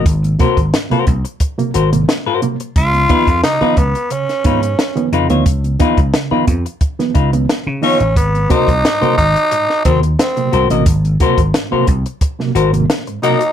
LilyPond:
<<
  \new Staff \with { instrumentName = "Clean electric guitar" } { \time 4/4 \key aes \mixolydian \tempo 4 = 89 r8 <ges' bes' c''>16 r8 <ges' bes' c''>16 r4 <ges' bes' c''>16 r8 <ges' bes' c''>16 r8 | r8 <ees' f' ces''>16 r8 <ees' f' ces''>16 r4 <ees' f' ces''>16 r8. <ees' f' ces''>16 <ees' f' des''>16 | r8 <ees' f' ces''>16 r8 <ees' f' ces''>16 r4 <ees' f' ces''>16 r8. <ees' f' des''>16 r16 | r8 <ges' bes' c''>16 r8 <ges' bes' c''>16 r4 <ges' bes' c''>16 r8. <ges' bes' c''>16 <ges' bes' ees''>16 |
r8 <ges' bes' c''>16 r8 <ges' bes' c''>16 r4 <ges' bes' c''>16 r8. <ges' bes' ees''>16 r16 | }
  \new Staff \with { instrumentName = "Tenor saxophone" } { \time 4/4 \key aes \mixolydian r1 | f'4 ees'8 ces'8 des'4. r8 | r2. r8 des'8 | ces'8 ees'4 ees'4 c'8 c'8. r16 |
r2. r8 ees'8 | }
  \new Staff \with { instrumentName = "Reed electric piano" } { \clef bass \time 4/4 \key aes \mixolydian aes,16 <ges bes>16 <c ges bes>16 r16 aes,16 <c ges bes>16 <ges bes>16 r8 <c ges bes>16 aes,16 <c ges bes>16 <ges bes>16 aes,16 <c ges bes>16 r16 | des16 <f ces'>16 <ees f ces'>16 r16 des16 <ees f ces'>16 r8 des16 r16 <ees f ces'>16 <f ces'>16 r16 <ees f ces'>16 des16 <ees f ces'>16 | des16 <f ces'>16 <ees f ces'>16 r16 des16 <ees f ces'>16 <f ces'>16 r8 <ees f ces'>16 des16 <ees f ces'>16 <f ces'>16 des16 <ees f ces'>16 r16 | aes,16 <ges bes>16 <c ges bes>16 r16 aes,16 <c ges bes>16 r8 aes,16 r16 <c ges bes>16 <ges bes>16 r16 <c ges bes>16 aes,16 <c ges bes>16 |
aes,16 <ges bes>16 <c ges bes>16 r16 aes,16 <c ges bes>16 <ges bes>16 r8 <c ges bes>16 r16 <c ges bes>16 r16 aes,16 <c ges bes>16 r16 | }
  \new Staff \with { instrumentName = "Slap bass" } { \clef bass \time 4/4 \key aes \mixolydian aes,,8 r16 aes,,16 r8 c,16 r8. aes,,8 r4 | des,8 r16 f,16 r8 des,16 r8. aes,8 r8 f,16 d,16 | des,8 r16 des,16 r8 f,16 r8. des,8 r16 des16 r16 a,,16 | aes,,8 r16 c,16 r8 aes,,16 r8. ees,8 r8 c,16 a,,16 |
aes,,8 r16 aes,,16 r8 c,16 r8. aes,,8 r4 | }
  \new DrumStaff \with { instrumentName = "Drums" } \drummode { \time 4/4 <hh bd>16 hh16 <hh bd>16 <hh bd>16 <hh sn>16 hh16 <hh bd>16 hh16 <hh bd>16 hh16 hh16 hh16 <hh sn>8 hh16 hh16 | <hh bd>16 hh16 <hh bd>16 <hh bd>16 <hh sn>16 hh16 <hh bd>16 hh16 hh16 <hh sn>16 <hh bd>16 hh16 <hh sn>16 hh16 hh16 hh16 | <hh bd>16 hh16 <hh bd>16 <hh bd>16 <hh sn>8 <hh bd>16 hh16 <hh bd>16 <hh sn>16 <hh bd>16 hh16 <hh sn>8 hho16 hh16 | <hh bd>16 hh16 <hh bd>16 <hh bd>16 <hh sn>16 hh16 <hh bd>16 hh16 hh16 sn16 <hh bd>16 hh16 <hh sn>16 hh16 hh16 hh16 |
<hh bd>16 hh16 <hh bd>16 <hh bd>16 <hh sn>8 <hh bd>16 hh16 <hh bd>16 sn16 hh16 hh16 <hh sn>16 hh16 hh16 hh16 | }
>>